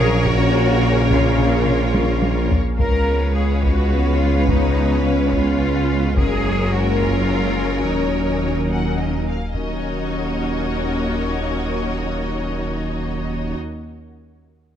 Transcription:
Already playing: A#1 F#3 A#3 C#4 G#4 A#4 C#5 F5
0.25 C#3 F#4, taiko
1.10 F4, taiko
1.38 taiko mid
1.66 taiko mid
1.94 taiko high
2.23 taiko high
2.51 taiko low
2.78 C#2 G#3 B3 C#4 A#4 B4 C#5 F5, taiko
3.36 G#4
3.63 F#4, taiko
4.20 F4
4.48 D#4, taiko
5.04 C#4
5.33 F4, taiko
6.17 F#1 F#2 F#3 A#3 C#4 G#4 A#4 C#5 G#5, taiko
6.74 F#4
7.02 F4, taiko
7.84 D#1 D#2 F#3 A#3 C#4 D#4
8.71 F#5
8.99 D#5
9.27 F5
9.54 D#1 D#2 F#3 A#3 C#4 D#4 F#4 A#4 C#5 D#5 F#5

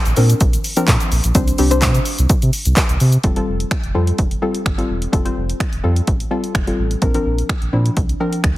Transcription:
0.05 A#1, closed hi-hat, shaker
0.17 A#2 F3 C4 D4 A#4, open hi-hat, shaker
0.30 closed hi-hat, shaker
0.41 A#1, kick, closed hi-hat, shaker
0.53 closed hi-hat, shaker
0.64 open hi-hat, shaker
0.77 F3 C4 D4 A#4, closed hi-hat, shaker
0.88 A#2, kick, clap, closed hi-hat, shaker
1.00 closed hi-hat, shaker
1.11 A#1, open hi-hat, shaker
1.24 A#1, closed hi-hat, shaker
1.35 C2 G3 C4 D4 C5, kick, closed hi-hat, shaker
1.48 closed hi-hat, shaker
1.58 C2 G3 C4 D4 G4, open hi-hat, shaker
1.71 G3 C4 D4 C5, closed hi-hat, shaker
1.82 C3, kick, clap, closed hi-hat, shaker
1.94 closed hi-hat, shaker
2.05 open hi-hat, shaker
2.19 C2, closed hi-hat, shaker
2.29 C3, kick, closed hi-hat, shaker
2.42 C3, closed hi-hat, shaker
2.53 open hi-hat, shaker
2.65 C2, closed hi-hat, shaker
2.76 C2, kick, clap, closed hi-hat, shaker
2.89 C2, closed hi-hat, shaker
3.00 C3, open hi-hat, shaker
3.12 closed hi-hat, shaker
3.23 F1 G3 C4 F4 A4, kick, closed hi-hat
3.36 G3 C4 F4 A4, closed hi-hat
3.48 F1
3.60 closed hi-hat
3.71 finger snap, kick, closed hi-hat
3.84 F1, closed hi-hat
3.94 F2 G3 C4 F4 A4
4.07 closed hi-hat
4.18 F1, kick, closed hi-hat
4.31 closed hi-hat
4.42 G3 C4 F4 A4
4.55 closed hi-hat
4.66 G1, finger snap, kick, closed hi-hat
4.78 G3 C4 F4 A4, closed hi-hat
4.89 E1
5.02 closed hi-hat
5.12 F1 G3 C4 F4 A4, kick, closed hi-hat
5.25 G3 C4 F4 C5, closed hi-hat
5.37 F1
5.50 closed hi-hat
5.60 finger snap, kick, closed hi-hat
5.73 F1, closed hi-hat
5.83 F2 G3 C4 F4 A4
5.96 closed hi-hat
6.07 A1, kick, closed hi-hat
6.20 closed hi-hat
6.31 G3 C4 F4 A4
6.44 closed hi-hat
6.55 F1, finger snap, kick, closed hi-hat
6.67 G3 C4 F4 A4, closed hi-hat
6.79 A1
6.91 closed hi-hat
7.02 A#1 F3 C4 D4 A#4, kick, closed hi-hat
7.14 F3 C4 D4 A#4, closed hi-hat
7.26 A#1
7.38 closed hi-hat
7.49 finger snap, kick, closed hi-hat
7.62 A#1, closed hi-hat
7.73 A#2 F3 C4 D4 E4
7.86 closed hi-hat
7.97 C2, kick, closed hi-hat
8.09 closed hi-hat
8.20 F3 C4 D4 A#4
8.33 closed hi-hat
8.44 D2, finger snap, kick, closed hi-hat

